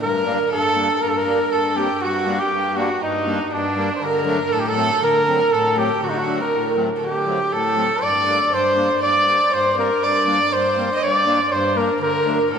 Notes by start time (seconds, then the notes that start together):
0.00 G2 A#4
0.24 G3 A#3 D4
0.50 G2 A4
0.76 G3 A#3 D4
1.01 G2 A#4
1.09 A4
1.17 A#4
1.25 G3 A#3 D4
1.52 G2 A4
1.75 G3 A#3 C4 G4
2.01 G2 F#4
2.26 G3 A#3 D4
2.39 G4
2.51 G2
2.76 G3 A#3 D4 F#4
3.01 G2 D#4
3.26 G3 A#3 D4
3.52 G2 D4
3.76 G3 A#3 D4
3.95 C5
4.02 D3 A#4
4.25 F#3 A3 D4 A#4
4.51 A2 A4
4.59 G4
4.68 A4
4.76 F#3 A3 C4
5.02 D3 A#4
5.27 F#3 A3 C4 A#4
5.52 A2 A4
5.76 F#3 A3 C4 G4
6.02 D3 F#4
6.10 D#4
6.18 F#4
6.25 F#3 A3 D4
6.40 A#4
6.52 A2
6.76 F#3 A3 C4
6.96 A4
7.00 D3 G4
7.26 F#3 A3 C4
7.52 A2 A4
7.76 F#3 A3 C4
8.02 G2 D5
8.26 G3 A#3 D4
8.51 G2 C5
8.76 G3 A#3 D4
9.01 G2 D5
9.25 G3 A#3 D4
9.51 G2 C5
9.76 G3 A#3 C4 A#4
10.02 G2 D5
10.26 G3 A#3 D4 D5
10.52 G2 C5
10.76 G3 A#3 C4
10.95 D#5
11.01 G2 D5
11.26 G3 A#3 D4
11.51 G2 C5
11.75 G3 A#3 D4 A#4
12.00 D3 A#4
12.26 F#3 A3 D4
12.51 A2 A4 A#4